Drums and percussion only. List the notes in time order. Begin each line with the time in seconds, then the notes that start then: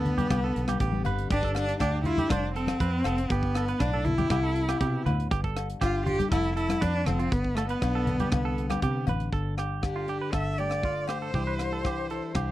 0.05 closed hi-hat, low conga
0.18 closed hi-hat, high conga, low conga
0.30 kick, cross-stick, closed hi-hat, high conga, low agogo
0.56 closed hi-hat
0.68 cross-stick, closed hi-hat, high conga, low agogo
0.80 kick, closed hi-hat
0.92 high conga
1.05 closed hi-hat, low conga, low agogo
1.19 closed hi-hat
1.31 kick, closed hi-hat
1.43 kick
1.55 cross-stick, closed hi-hat, low agogo
1.69 closed hi-hat
1.80 kick, cross-stick, closed hi-hat, low agogo
2.04 closed hi-hat, low conga
2.18 closed hi-hat, high conga, low conga
2.30 kick, cross-stick, closed hi-hat, high conga, low agogo
2.56 closed hi-hat
2.67 cross-stick, closed hi-hat, high conga, low agogo
2.80 kick, closed hi-hat
3.04 cross-stick, closed hi-hat, low agogo
3.18 closed hi-hat
3.30 kick, closed hi-hat
3.43 kick
3.55 cross-stick, closed hi-hat, low agogo
3.68 closed hi-hat
3.80 kick, cross-stick, closed hi-hat, low agogo
4.05 closed hi-hat, low conga
4.18 closed hi-hat, high conga, low conga
4.30 kick, cross-stick, closed hi-hat, high conga, low agogo
4.56 closed hi-hat
4.69 cross-stick, closed hi-hat, low agogo
4.81 kick, closed hi-hat
5.06 closed hi-hat, low conga, low agogo
5.20 closed hi-hat
5.31 kick, closed hi-hat
5.44 kick
5.57 cross-stick, closed hi-hat, low agogo
5.70 closed hi-hat
5.81 kick, cross-stick, closed hi-hat, low agogo
6.07 closed hi-hat, low conga
6.20 closed hi-hat, high conga, low conga
6.32 kick, cross-stick, closed hi-hat, high conga, low agogo
6.57 closed hi-hat
6.69 cross-stick, closed hi-hat, high conga, low agogo
6.82 kick, closed hi-hat
7.06 cross-stick, closed hi-hat, low conga, low agogo
7.20 closed hi-hat
7.32 kick, closed hi-hat
7.44 kick
7.57 cross-stick, closed hi-hat, low agogo
7.69 closed hi-hat
7.82 kick, cross-stick, closed hi-hat, low agogo
8.07 closed hi-hat, low conga
8.20 closed hi-hat, high conga, low conga
8.32 kick, cross-stick, closed hi-hat, high conga, low agogo
8.58 closed hi-hat
8.70 cross-stick, closed hi-hat, high conga, low agogo
8.82 kick, closed hi-hat
9.07 closed hi-hat, low conga, low agogo
9.20 closed hi-hat
9.33 kick
9.58 cross-stick, closed hi-hat, low agogo
9.83 kick, cross-stick, low agogo
10.08 closed hi-hat
10.33 kick, cross-stick, low agogo
10.58 closed hi-hat
10.70 cross-stick, low agogo
10.83 kick
11.07 cross-stick, closed hi-hat, low agogo
11.34 kick
11.59 cross-stick, closed hi-hat, low agogo
11.84 kick, cross-stick, low agogo
12.10 closed hi-hat
12.35 kick, cross-stick, low agogo